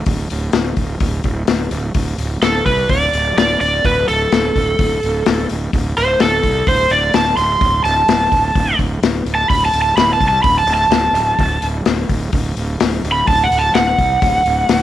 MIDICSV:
0, 0, Header, 1, 4, 480
1, 0, Start_track
1, 0, Tempo, 472069
1, 68, Time_signature, 4, 2, 24, 8
1, 15072, End_track
2, 0, Start_track
2, 0, Title_t, "Electric slide guitar"
2, 0, Program_c, 0, 29
2, 2467, Note_on_c, 0, 69, 91
2, 2700, Note_off_c, 0, 69, 0
2, 2707, Note_on_c, 0, 71, 87
2, 2940, Note_off_c, 0, 71, 0
2, 2944, Note_on_c, 0, 74, 93
2, 3411, Note_off_c, 0, 74, 0
2, 3437, Note_on_c, 0, 74, 106
2, 3657, Note_off_c, 0, 74, 0
2, 3669, Note_on_c, 0, 74, 93
2, 3901, Note_off_c, 0, 74, 0
2, 3919, Note_on_c, 0, 71, 96
2, 4146, Note_off_c, 0, 71, 0
2, 4151, Note_on_c, 0, 69, 92
2, 5548, Note_off_c, 0, 69, 0
2, 6078, Note_on_c, 0, 72, 100
2, 6305, Note_off_c, 0, 72, 0
2, 6318, Note_on_c, 0, 69, 96
2, 6778, Note_off_c, 0, 69, 0
2, 6794, Note_on_c, 0, 72, 99
2, 7023, Note_off_c, 0, 72, 0
2, 7030, Note_on_c, 0, 74, 85
2, 7261, Note_off_c, 0, 74, 0
2, 7271, Note_on_c, 0, 81, 95
2, 7490, Note_off_c, 0, 81, 0
2, 7494, Note_on_c, 0, 84, 101
2, 7966, Note_off_c, 0, 84, 0
2, 7976, Note_on_c, 0, 81, 103
2, 8912, Note_off_c, 0, 81, 0
2, 9505, Note_on_c, 0, 81, 107
2, 9652, Note_off_c, 0, 81, 0
2, 9656, Note_on_c, 0, 83, 100
2, 9812, Note_off_c, 0, 83, 0
2, 9816, Note_on_c, 0, 81, 94
2, 9970, Note_off_c, 0, 81, 0
2, 9982, Note_on_c, 0, 81, 92
2, 10136, Note_off_c, 0, 81, 0
2, 10140, Note_on_c, 0, 83, 90
2, 10298, Note_off_c, 0, 83, 0
2, 10304, Note_on_c, 0, 81, 88
2, 10447, Note_off_c, 0, 81, 0
2, 10459, Note_on_c, 0, 81, 87
2, 10603, Note_off_c, 0, 81, 0
2, 10607, Note_on_c, 0, 83, 86
2, 10759, Note_off_c, 0, 83, 0
2, 10763, Note_on_c, 0, 81, 91
2, 10910, Note_off_c, 0, 81, 0
2, 10922, Note_on_c, 0, 81, 98
2, 11865, Note_off_c, 0, 81, 0
2, 13341, Note_on_c, 0, 83, 108
2, 13498, Note_off_c, 0, 83, 0
2, 13504, Note_on_c, 0, 81, 93
2, 13660, Note_off_c, 0, 81, 0
2, 13662, Note_on_c, 0, 78, 98
2, 13816, Note_on_c, 0, 81, 100
2, 13819, Note_off_c, 0, 78, 0
2, 13970, Note_on_c, 0, 78, 103
2, 13976, Note_off_c, 0, 81, 0
2, 15072, Note_off_c, 0, 78, 0
2, 15072, End_track
3, 0, Start_track
3, 0, Title_t, "Fingered electric bass"
3, 0, Program_c, 1, 33
3, 63, Note_on_c, 1, 26, 90
3, 247, Note_off_c, 1, 26, 0
3, 313, Note_on_c, 1, 26, 80
3, 493, Note_off_c, 1, 26, 0
3, 546, Note_on_c, 1, 26, 86
3, 729, Note_off_c, 1, 26, 0
3, 779, Note_on_c, 1, 26, 81
3, 964, Note_off_c, 1, 26, 0
3, 1024, Note_on_c, 1, 26, 74
3, 1207, Note_off_c, 1, 26, 0
3, 1263, Note_on_c, 1, 26, 89
3, 1447, Note_off_c, 1, 26, 0
3, 1506, Note_on_c, 1, 26, 81
3, 1689, Note_off_c, 1, 26, 0
3, 1737, Note_on_c, 1, 26, 95
3, 1923, Note_off_c, 1, 26, 0
3, 1979, Note_on_c, 1, 26, 93
3, 2164, Note_off_c, 1, 26, 0
3, 2215, Note_on_c, 1, 26, 74
3, 2402, Note_off_c, 1, 26, 0
3, 2459, Note_on_c, 1, 26, 90
3, 2644, Note_off_c, 1, 26, 0
3, 2705, Note_on_c, 1, 36, 76
3, 2888, Note_off_c, 1, 36, 0
3, 2947, Note_on_c, 1, 26, 87
3, 3129, Note_off_c, 1, 26, 0
3, 3180, Note_on_c, 1, 26, 94
3, 3365, Note_off_c, 1, 26, 0
3, 3425, Note_on_c, 1, 26, 86
3, 3608, Note_off_c, 1, 26, 0
3, 3666, Note_on_c, 1, 26, 92
3, 3848, Note_off_c, 1, 26, 0
3, 3911, Note_on_c, 1, 26, 104
3, 4091, Note_off_c, 1, 26, 0
3, 4157, Note_on_c, 1, 26, 79
3, 4335, Note_off_c, 1, 26, 0
3, 4392, Note_on_c, 1, 26, 88
3, 4572, Note_off_c, 1, 26, 0
3, 4633, Note_on_c, 1, 26, 84
3, 4813, Note_off_c, 1, 26, 0
3, 4868, Note_on_c, 1, 26, 82
3, 5049, Note_off_c, 1, 26, 0
3, 5122, Note_on_c, 1, 26, 89
3, 5298, Note_off_c, 1, 26, 0
3, 5360, Note_on_c, 1, 26, 82
3, 5537, Note_off_c, 1, 26, 0
3, 5600, Note_on_c, 1, 26, 82
3, 5777, Note_off_c, 1, 26, 0
3, 5830, Note_on_c, 1, 26, 94
3, 6011, Note_off_c, 1, 26, 0
3, 6082, Note_on_c, 1, 26, 87
3, 6258, Note_off_c, 1, 26, 0
3, 6314, Note_on_c, 1, 26, 83
3, 6493, Note_off_c, 1, 26, 0
3, 6543, Note_on_c, 1, 36, 89
3, 6726, Note_off_c, 1, 36, 0
3, 6781, Note_on_c, 1, 26, 84
3, 6965, Note_off_c, 1, 26, 0
3, 7024, Note_on_c, 1, 26, 81
3, 7207, Note_off_c, 1, 26, 0
3, 7262, Note_on_c, 1, 26, 90
3, 7446, Note_off_c, 1, 26, 0
3, 7494, Note_on_c, 1, 26, 91
3, 7680, Note_off_c, 1, 26, 0
3, 7740, Note_on_c, 1, 26, 93
3, 7924, Note_off_c, 1, 26, 0
3, 7974, Note_on_c, 1, 26, 84
3, 8161, Note_off_c, 1, 26, 0
3, 8216, Note_on_c, 1, 26, 93
3, 8402, Note_off_c, 1, 26, 0
3, 8458, Note_on_c, 1, 26, 79
3, 8643, Note_off_c, 1, 26, 0
3, 8696, Note_on_c, 1, 26, 90
3, 8881, Note_off_c, 1, 26, 0
3, 8935, Note_on_c, 1, 26, 87
3, 9121, Note_off_c, 1, 26, 0
3, 9174, Note_on_c, 1, 26, 84
3, 9360, Note_off_c, 1, 26, 0
3, 9408, Note_on_c, 1, 26, 93
3, 9597, Note_off_c, 1, 26, 0
3, 9658, Note_on_c, 1, 26, 105
3, 9843, Note_off_c, 1, 26, 0
3, 9895, Note_on_c, 1, 26, 77
3, 10081, Note_off_c, 1, 26, 0
3, 10132, Note_on_c, 1, 26, 87
3, 10319, Note_off_c, 1, 26, 0
3, 10379, Note_on_c, 1, 36, 85
3, 10563, Note_off_c, 1, 36, 0
3, 10617, Note_on_c, 1, 26, 81
3, 10802, Note_off_c, 1, 26, 0
3, 10837, Note_on_c, 1, 26, 85
3, 11030, Note_off_c, 1, 26, 0
3, 11073, Note_on_c, 1, 26, 88
3, 11267, Note_off_c, 1, 26, 0
3, 11315, Note_on_c, 1, 26, 86
3, 11508, Note_off_c, 1, 26, 0
3, 11582, Note_on_c, 1, 26, 96
3, 11765, Note_off_c, 1, 26, 0
3, 11816, Note_on_c, 1, 26, 89
3, 12001, Note_off_c, 1, 26, 0
3, 12056, Note_on_c, 1, 26, 83
3, 12241, Note_off_c, 1, 26, 0
3, 12295, Note_on_c, 1, 26, 81
3, 12481, Note_off_c, 1, 26, 0
3, 12536, Note_on_c, 1, 26, 87
3, 12721, Note_off_c, 1, 26, 0
3, 12780, Note_on_c, 1, 26, 86
3, 12964, Note_off_c, 1, 26, 0
3, 13024, Note_on_c, 1, 26, 82
3, 13206, Note_off_c, 1, 26, 0
3, 13254, Note_on_c, 1, 26, 87
3, 13440, Note_off_c, 1, 26, 0
3, 13501, Note_on_c, 1, 26, 92
3, 13685, Note_off_c, 1, 26, 0
3, 13733, Note_on_c, 1, 26, 80
3, 13919, Note_off_c, 1, 26, 0
3, 13975, Note_on_c, 1, 26, 80
3, 14161, Note_off_c, 1, 26, 0
3, 14217, Note_on_c, 1, 36, 83
3, 14402, Note_off_c, 1, 36, 0
3, 14458, Note_on_c, 1, 26, 78
3, 14642, Note_off_c, 1, 26, 0
3, 14695, Note_on_c, 1, 26, 88
3, 14881, Note_off_c, 1, 26, 0
3, 14935, Note_on_c, 1, 26, 86
3, 15072, Note_off_c, 1, 26, 0
3, 15072, End_track
4, 0, Start_track
4, 0, Title_t, "Drums"
4, 61, Note_on_c, 9, 46, 67
4, 66, Note_on_c, 9, 36, 112
4, 163, Note_off_c, 9, 46, 0
4, 168, Note_off_c, 9, 36, 0
4, 307, Note_on_c, 9, 46, 58
4, 409, Note_off_c, 9, 46, 0
4, 538, Note_on_c, 9, 46, 74
4, 543, Note_on_c, 9, 38, 106
4, 639, Note_off_c, 9, 46, 0
4, 644, Note_off_c, 9, 38, 0
4, 780, Note_on_c, 9, 46, 56
4, 782, Note_on_c, 9, 36, 88
4, 881, Note_off_c, 9, 46, 0
4, 884, Note_off_c, 9, 36, 0
4, 1020, Note_on_c, 9, 46, 81
4, 1023, Note_on_c, 9, 36, 111
4, 1122, Note_off_c, 9, 46, 0
4, 1125, Note_off_c, 9, 36, 0
4, 1259, Note_on_c, 9, 46, 48
4, 1263, Note_on_c, 9, 36, 75
4, 1361, Note_off_c, 9, 46, 0
4, 1364, Note_off_c, 9, 36, 0
4, 1499, Note_on_c, 9, 46, 82
4, 1504, Note_on_c, 9, 38, 109
4, 1601, Note_off_c, 9, 46, 0
4, 1606, Note_off_c, 9, 38, 0
4, 1739, Note_on_c, 9, 46, 58
4, 1841, Note_off_c, 9, 46, 0
4, 1978, Note_on_c, 9, 46, 80
4, 1981, Note_on_c, 9, 36, 106
4, 2079, Note_off_c, 9, 46, 0
4, 2083, Note_off_c, 9, 36, 0
4, 2221, Note_on_c, 9, 46, 55
4, 2322, Note_off_c, 9, 46, 0
4, 2462, Note_on_c, 9, 46, 68
4, 2467, Note_on_c, 9, 38, 97
4, 2563, Note_off_c, 9, 46, 0
4, 2569, Note_off_c, 9, 38, 0
4, 2703, Note_on_c, 9, 36, 82
4, 2704, Note_on_c, 9, 46, 59
4, 2804, Note_off_c, 9, 36, 0
4, 2806, Note_off_c, 9, 46, 0
4, 2942, Note_on_c, 9, 46, 75
4, 2943, Note_on_c, 9, 36, 106
4, 3043, Note_off_c, 9, 46, 0
4, 3045, Note_off_c, 9, 36, 0
4, 3187, Note_on_c, 9, 46, 55
4, 3289, Note_off_c, 9, 46, 0
4, 3434, Note_on_c, 9, 46, 75
4, 3439, Note_on_c, 9, 38, 111
4, 3535, Note_off_c, 9, 46, 0
4, 3540, Note_off_c, 9, 38, 0
4, 3671, Note_on_c, 9, 46, 54
4, 3773, Note_off_c, 9, 46, 0
4, 3910, Note_on_c, 9, 36, 104
4, 3912, Note_on_c, 9, 46, 64
4, 4012, Note_off_c, 9, 36, 0
4, 4013, Note_off_c, 9, 46, 0
4, 4151, Note_on_c, 9, 46, 54
4, 4252, Note_off_c, 9, 46, 0
4, 4393, Note_on_c, 9, 46, 65
4, 4398, Note_on_c, 9, 38, 99
4, 4494, Note_off_c, 9, 46, 0
4, 4500, Note_off_c, 9, 38, 0
4, 4633, Note_on_c, 9, 36, 87
4, 4635, Note_on_c, 9, 46, 57
4, 4735, Note_off_c, 9, 36, 0
4, 4737, Note_off_c, 9, 46, 0
4, 4870, Note_on_c, 9, 46, 76
4, 4871, Note_on_c, 9, 36, 113
4, 4971, Note_off_c, 9, 46, 0
4, 4973, Note_off_c, 9, 36, 0
4, 5114, Note_on_c, 9, 46, 51
4, 5215, Note_off_c, 9, 46, 0
4, 5348, Note_on_c, 9, 46, 77
4, 5353, Note_on_c, 9, 38, 112
4, 5450, Note_off_c, 9, 46, 0
4, 5455, Note_off_c, 9, 38, 0
4, 5586, Note_on_c, 9, 46, 57
4, 5688, Note_off_c, 9, 46, 0
4, 5829, Note_on_c, 9, 36, 110
4, 5831, Note_on_c, 9, 46, 68
4, 5931, Note_off_c, 9, 36, 0
4, 5932, Note_off_c, 9, 46, 0
4, 6068, Note_on_c, 9, 46, 59
4, 6170, Note_off_c, 9, 46, 0
4, 6303, Note_on_c, 9, 46, 79
4, 6308, Note_on_c, 9, 38, 92
4, 6404, Note_off_c, 9, 46, 0
4, 6410, Note_off_c, 9, 38, 0
4, 6541, Note_on_c, 9, 46, 66
4, 6543, Note_on_c, 9, 36, 80
4, 6643, Note_off_c, 9, 46, 0
4, 6645, Note_off_c, 9, 36, 0
4, 6781, Note_on_c, 9, 46, 81
4, 6782, Note_on_c, 9, 36, 110
4, 6883, Note_off_c, 9, 46, 0
4, 6884, Note_off_c, 9, 36, 0
4, 7016, Note_on_c, 9, 46, 52
4, 7117, Note_off_c, 9, 46, 0
4, 7257, Note_on_c, 9, 46, 80
4, 7262, Note_on_c, 9, 38, 113
4, 7359, Note_off_c, 9, 46, 0
4, 7364, Note_off_c, 9, 38, 0
4, 7496, Note_on_c, 9, 46, 58
4, 7598, Note_off_c, 9, 46, 0
4, 7739, Note_on_c, 9, 36, 113
4, 7739, Note_on_c, 9, 46, 74
4, 7841, Note_off_c, 9, 36, 0
4, 7841, Note_off_c, 9, 46, 0
4, 7984, Note_on_c, 9, 46, 54
4, 8085, Note_off_c, 9, 46, 0
4, 8220, Note_on_c, 9, 46, 67
4, 8225, Note_on_c, 9, 38, 110
4, 8321, Note_off_c, 9, 46, 0
4, 8327, Note_off_c, 9, 38, 0
4, 8459, Note_on_c, 9, 36, 91
4, 8463, Note_on_c, 9, 46, 62
4, 8560, Note_off_c, 9, 36, 0
4, 8564, Note_off_c, 9, 46, 0
4, 8698, Note_on_c, 9, 36, 108
4, 8699, Note_on_c, 9, 46, 75
4, 8800, Note_off_c, 9, 36, 0
4, 8801, Note_off_c, 9, 46, 0
4, 8938, Note_on_c, 9, 36, 79
4, 8940, Note_on_c, 9, 46, 46
4, 9039, Note_off_c, 9, 36, 0
4, 9041, Note_off_c, 9, 46, 0
4, 9182, Note_on_c, 9, 46, 78
4, 9187, Note_on_c, 9, 38, 123
4, 9284, Note_off_c, 9, 46, 0
4, 9289, Note_off_c, 9, 38, 0
4, 9420, Note_on_c, 9, 46, 57
4, 9521, Note_off_c, 9, 46, 0
4, 9659, Note_on_c, 9, 36, 106
4, 9663, Note_on_c, 9, 46, 79
4, 9760, Note_off_c, 9, 36, 0
4, 9765, Note_off_c, 9, 46, 0
4, 9899, Note_on_c, 9, 46, 57
4, 10001, Note_off_c, 9, 46, 0
4, 10140, Note_on_c, 9, 46, 75
4, 10145, Note_on_c, 9, 38, 100
4, 10242, Note_off_c, 9, 46, 0
4, 10247, Note_off_c, 9, 38, 0
4, 10377, Note_on_c, 9, 36, 87
4, 10381, Note_on_c, 9, 46, 63
4, 10479, Note_off_c, 9, 36, 0
4, 10483, Note_off_c, 9, 46, 0
4, 10616, Note_on_c, 9, 46, 79
4, 10617, Note_on_c, 9, 36, 116
4, 10718, Note_off_c, 9, 36, 0
4, 10718, Note_off_c, 9, 46, 0
4, 10854, Note_on_c, 9, 46, 56
4, 10955, Note_off_c, 9, 46, 0
4, 11099, Note_on_c, 9, 46, 77
4, 11104, Note_on_c, 9, 38, 111
4, 11201, Note_off_c, 9, 46, 0
4, 11206, Note_off_c, 9, 38, 0
4, 11338, Note_on_c, 9, 46, 59
4, 11440, Note_off_c, 9, 46, 0
4, 11578, Note_on_c, 9, 36, 100
4, 11584, Note_on_c, 9, 46, 78
4, 11680, Note_off_c, 9, 36, 0
4, 11685, Note_off_c, 9, 46, 0
4, 11816, Note_on_c, 9, 46, 60
4, 11917, Note_off_c, 9, 46, 0
4, 12054, Note_on_c, 9, 46, 64
4, 12059, Note_on_c, 9, 38, 92
4, 12156, Note_off_c, 9, 46, 0
4, 12161, Note_off_c, 9, 38, 0
4, 12297, Note_on_c, 9, 36, 85
4, 12298, Note_on_c, 9, 46, 60
4, 12399, Note_off_c, 9, 36, 0
4, 12399, Note_off_c, 9, 46, 0
4, 12533, Note_on_c, 9, 46, 70
4, 12537, Note_on_c, 9, 36, 108
4, 12635, Note_off_c, 9, 46, 0
4, 12639, Note_off_c, 9, 36, 0
4, 12779, Note_on_c, 9, 46, 55
4, 12880, Note_off_c, 9, 46, 0
4, 13016, Note_on_c, 9, 46, 76
4, 13022, Note_on_c, 9, 38, 106
4, 13118, Note_off_c, 9, 46, 0
4, 13123, Note_off_c, 9, 38, 0
4, 13266, Note_on_c, 9, 46, 52
4, 13368, Note_off_c, 9, 46, 0
4, 13495, Note_on_c, 9, 46, 73
4, 13499, Note_on_c, 9, 36, 111
4, 13597, Note_off_c, 9, 46, 0
4, 13601, Note_off_c, 9, 36, 0
4, 13743, Note_on_c, 9, 46, 56
4, 13845, Note_off_c, 9, 46, 0
4, 13978, Note_on_c, 9, 46, 80
4, 13983, Note_on_c, 9, 38, 112
4, 14080, Note_off_c, 9, 46, 0
4, 14085, Note_off_c, 9, 38, 0
4, 14219, Note_on_c, 9, 36, 83
4, 14220, Note_on_c, 9, 46, 62
4, 14321, Note_off_c, 9, 36, 0
4, 14322, Note_off_c, 9, 46, 0
4, 14459, Note_on_c, 9, 46, 75
4, 14460, Note_on_c, 9, 36, 108
4, 14561, Note_off_c, 9, 46, 0
4, 14562, Note_off_c, 9, 36, 0
4, 14700, Note_on_c, 9, 46, 58
4, 14802, Note_off_c, 9, 46, 0
4, 14936, Note_on_c, 9, 46, 87
4, 14941, Note_on_c, 9, 38, 105
4, 15038, Note_off_c, 9, 46, 0
4, 15043, Note_off_c, 9, 38, 0
4, 15072, End_track
0, 0, End_of_file